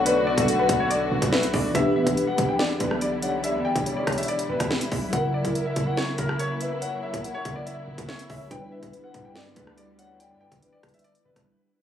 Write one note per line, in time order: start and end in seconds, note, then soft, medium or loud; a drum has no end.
0.00 0.34 B1 loud
0.00 1.69 B2 medium
0.00 1.71 D3 medium
0.00 1.71 A3 medium
0.00 1.70 B3 medium
0.00 5.09 B3 medium
0.00 1.72 D4 medium
0.00 1.71 F#4 medium
0.00 1.73 A4 medium
0.05 0.22 B4 medium
0.05 0.45 D5 loud
0.05 closed hi-hat medium
0.27 0.57 D5 medium
0.38 0.68 B1 loud
0.38 kick medium
0.38 closed hi-hat medium
0.48 0.88 F#5 medium
0.48 closed hi-hat medium
0.59 0.75 B4 medium
0.69 1.10 B1 loud
0.69 kick loud
0.69 closed hi-hat medium
0.80 0.88 C#5 medium
0.90 1.30 D5 medium
0.90 closed hi-hat medium
1.11 1.22 B1 loud
1.22 1.52 B1 loud
1.22 kick medium
1.22 closed hi-hat medium
1.32 1.49 B4 medium
1.32 1.53 E5 medium
1.32 snare loud
1.43 closed hi-hat medium
1.54 1.74 B1 loud
1.54 1.70 D5 medium
1.54 1.74 D5 medium
1.54 kick loud
1.54 open hi-hat medium
1.71 5.07 E3 medium
1.71 5.08 B3 medium
1.75 1.97 E1 loud
1.75 5.09 D3 medium
1.75 5.09 G3 medium
1.75 5.10 D4 medium
1.75 11.82 E4 medium
1.75 2.55 B4 loud
1.75 1.91 E5 loud
1.75 kick loud
1.75 closed hi-hat medium
1.80 5.11 G4 medium
1.96 2.06 D1 loud
1.96 2.26 E5 medium
2.07 2.37 E1 loud
2.07 kick medium
2.07 closed hi-hat medium
2.17 closed hi-hat medium
2.27 2.44 F#5 medium
2.38 2.79 E2 loud
2.38 kick loud
2.38 closed hi-hat medium
2.49 2.57 G5 medium
2.59 2.76 D5 medium
2.59 snare loud
2.80 3.56 B1 loud
2.80 2.97 B4 medium
2.80 kick medium
2.80 closed hi-hat medium
2.91 cross-stick medium
3.01 3.18 D5 medium
3.01 closed hi-hat medium
3.22 3.43 C#5 loud
3.22 3.39 F#5 medium
3.22 closed hi-hat medium
3.44 3.84 D5 loud
3.44 3.60 E5 medium
3.44 closed hi-hat medium
3.54 3.75 E2 loud
3.65 3.95 G5 medium
3.76 4.06 E1 loud
3.76 kick medium
3.76 closed hi-hat medium
3.86 4.26 C#5 medium
3.86 closed hi-hat medium
3.97 4.13 D5 medium
4.07 4.48 E1 loud
4.07 kick medium
4.07 cross-stick loud
4.07 closed hi-hat medium
4.12 closed hi-hat medium
4.18 4.26 E5 medium
4.18 closed hi-hat medium
4.23 closed hi-hat medium
4.28 4.45 D5 medium
4.28 closed hi-hat medium
4.39 closed hi-hat medium
4.50 4.59 E1 loud
4.50 5.09 B4 medium
4.60 4.90 E1 loud
4.60 kick medium
4.60 cross-stick medium
4.60 closed hi-hat medium
4.71 snare loud
4.81 closed hi-hat medium
4.92 5.12 B1 loud
4.92 kick loud
4.92 open hi-hat medium
5.09 8.46 C#3 medium
5.09 8.45 F#3 medium
5.13 5.43 F#1 loud
5.13 8.48 C#3 medium
5.13 8.48 F#3 medium
5.13 8.48 A#3 medium
5.13 8.48 E4 medium
5.13 5.94 A#4 loud
5.13 5.29 F#5 medium
5.13 kick loud
5.13 closed hi-hat medium
5.17 8.49 A#4 medium
5.34 5.64 D5 medium
5.45 5.75 F#1 loud
5.45 kick medium
5.45 closed hi-hat medium
5.55 closed hi-hat medium
5.66 5.82 E5 medium
5.76 5.97 F#1 loud
5.76 kick medium
5.76 closed hi-hat medium
5.87 5.95 F#5 medium
5.97 6.14 C#5 medium
5.97 snare loud
6.18 7.10 F#1 loud
6.18 6.35 A#4 medium
6.18 kick medium
6.18 closed hi-hat medium
6.29 cross-stick loud
6.39 6.56 C#5 medium
6.39 closed hi-hat medium
6.61 6.81 B4 medium
6.61 6.77 E5 medium
6.61 closed hi-hat medium
6.82 7.22 C#5 loud
6.82 6.98 F#5 medium
6.82 closed hi-hat medium
7.03 7.33 E5 medium
7.14 7.44 F#1 loud
7.14 kick medium
7.14 closed hi-hat medium
7.24 7.64 F#5 medium
7.24 closed hi-hat medium
7.34 7.51 C#5 medium
7.45 7.86 F#1 loud
7.45 kick loud
7.45 closed hi-hat medium
7.56 7.64 D5 medium
7.66 8.06 E5 medium
7.66 closed hi-hat medium
7.88 7.98 F#1 loud
7.98 8.29 F#1 loud
7.98 kick medium
7.98 closed hi-hat medium
8.08 8.25 C#5 medium
8.08 8.29 E5 medium
8.08 snare loud
8.19 closed hi-hat medium
8.30 8.50 F#1 loud
8.30 8.50 C#5 medium
8.30 8.46 E5 medium
8.30 kick loud
8.30 open hi-hat medium
8.47 11.82 G3 medium
8.47 11.82 D4 medium
8.51 8.74 G1 loud
8.51 11.82 D3 medium
8.51 11.82 G3 medium
8.51 11.82 B3 medium
8.51 11.82 E4 medium
8.51 9.31 B4 loud
8.51 8.67 G5 loud
8.51 kick loud
8.51 closed hi-hat medium
8.55 11.82 B4 medium
8.72 8.82 F#1 loud
8.72 9.02 E5 medium
8.83 9.13 G1 loud
8.83 kick medium
8.83 closed hi-hat medium
8.93 closed hi-hat medium
9.04 9.20 F#5 medium
9.14 9.55 G2 loud
9.14 kick loud
9.14 closed hi-hat medium
9.25 9.33 G5 medium
9.36 9.52 D5 medium
9.36 snare loud
9.56 10.32 D2 loud
9.56 9.73 B4 medium
9.56 kick medium
9.56 closed hi-hat medium
9.67 cross-stick medium
9.78 9.94 D5 medium
9.78 closed hi-hat medium
9.99 10.19 C#5 medium
9.99 10.15 F#5 medium
9.99 closed hi-hat medium
10.20 10.60 D5 loud
10.20 10.36 G5 medium
10.20 closed hi-hat medium
10.30 10.51 G2 loud
10.41 10.71 G5 medium
10.52 10.82 G1 loud
10.52 kick medium
10.52 closed hi-hat medium
10.62 11.02 B4 medium
10.62 closed hi-hat medium
10.73 10.89 D5 medium
10.83 11.24 G1 loud
10.83 kick medium
10.83 cross-stick loud
10.83 closed hi-hat medium
10.89 closed hi-hat medium
10.94 11.02 E5 medium
10.94 closed hi-hat medium
10.99 closed hi-hat medium
11.04 11.21 D5 medium
11.04 closed hi-hat medium
11.15 closed hi-hat medium
11.25 11.36 G1 loud
11.25 11.82 B4 medium
11.36 11.46 G1 loud
11.36 kick medium
11.36 cross-stick medium
11.36 closed hi-hat medium